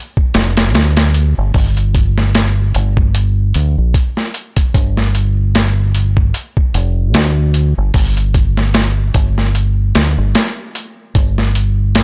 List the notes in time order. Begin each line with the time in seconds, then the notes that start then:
0.17 kick
0.34 F1, snare, closed hi-hat
0.57 snare, closed hi-hat
0.75 D2, snare, closed hi-hat
0.97 snare, closed hi-hat
1.14 closed hi-hat
1.38 G1
1.54 G1, kick, open hi-hat
1.77 closed hi-hat
1.95 kick, closed hi-hat
2.18 snare
2.35 snare, closed hi-hat
2.75 G1, closed hi-hat
2.97 kick
3.15 closed hi-hat
3.54 D2, closed hi-hat
3.78 A#1
3.94 kick, closed hi-hat
4.17 snare
4.34 closed hi-hat
4.56 kick, closed hi-hat
4.74 G1, kick, closed hi-hat
4.97 snare
5.15 closed hi-hat
5.55 snare, closed hi-hat
5.95 closed hi-hat
6.17 kick
6.34 closed hi-hat
6.57 kick
6.74 F1, closed hi-hat
7.14 D2, snare, closed hi-hat
7.54 closed hi-hat
7.78 G1
7.94 G1, kick, open hi-hat
8.17 closed hi-hat
8.34 kick, closed hi-hat
8.57 snare
8.74 snare, closed hi-hat
9.14 G1, kick, closed hi-hat
9.38 snare
9.55 closed hi-hat
9.95 D2, snare, closed hi-hat
10.18 G1
10.35 snare, closed hi-hat
10.75 closed hi-hat
11.15 G1, kick, closed hi-hat
11.38 snare
11.55 closed hi-hat
11.95 snare, closed hi-hat